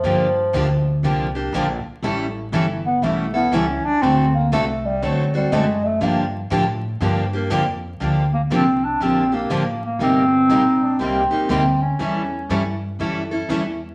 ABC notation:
X:1
M:4/4
L:1/8
Q:"Swing" 1/4=120
K:Gm
V:1 name="Clarinet"
z8 | z8 | z8 | z8 |
z B, C D C B,2 B, | C6 z2 | z8 |]
V:2 name="Steel-string acoustic guitar"
[D,F,B,DG] z [D,F,B,DG] z [D,F,B,DG] [B,DG] [D,F,B,DG] z | [=E,G,^C=EA] z [E,G,CEA] z [E,G,CEA] [CEA] [E,G,CEA] z | [D,A,C^FA] z [D,A,CFA] z [D,A,CFA] [CFA] [D,A,CFA] z | [D,F,B,DG] z [D,F,B,DG] z [D,F,B,DG] [B,DG] [D,F,B,DG] z |
[D,F,B,DG] z [D,F,B,DG] z [D,F,B,DG] [B,DG] [D,F,B,DG] z | [C,G,B,EG] z [C,G,B,EG] z [C,G,B,EG] [B,EG] [C,G,B,EG] z | [=E,G,^C=EA] z [E,G,CEA] z [E,G,CEA] [CEA] [E,G,CEA] z |]
V:3 name="Bass clarinet"
F,4 z4 | z3 =B, A, B, ^C D | C B, A, G, ^F, G, _A, =A, | B, z6 z |
z8 | z2 E D C2 C ^C- | ^C3 z4 z |]
V:4 name="Steel-string acoustic guitar"
[D,F,B,DG] z [D,F,B,DG] z [D,F,B,DG] z [D,F,B,DG] z | [=E,G,^C=EA] z [E,G,CEA] z [E,G,CEA] z [E,G,CEA] z | [D,A,C^FA] z [D,A,CFA] z [D,A,CFA] z [D,A,CFA] z | [D,F,B,DG] z [D,F,B,DG] z [D,F,B,DG] z [D,F,B,DG] z |
[D,F,B,DG] z [D,F,B,DG] z [D,F,B,DG] z [D,F,B,DG] z | [C,G,B,EG] z [C,G,B,EG] z [C,G,B,EG] z [C,G,B,EG] z | [=E,G,^C=EA] z [E,G,CEA] z [E,G,CEA] z [E,G,CEA] z |]
V:5 name="Upright bass" clef=bass
G,,2 D,,2 C,,2 B,,, z | A,,,2 G,,,2 =B,,,2 ^C,, z | D,,2 C,,2 D,,2 ^F,,2 | G,,2 A,,2 G,,2 F,,2 |
D,,2 C,,2 B,,,2 A,,,2 | G,,,2 B,,,2 C,, z D,,2 | =E,,2 G,,2 ^F,,2 E,,2 |]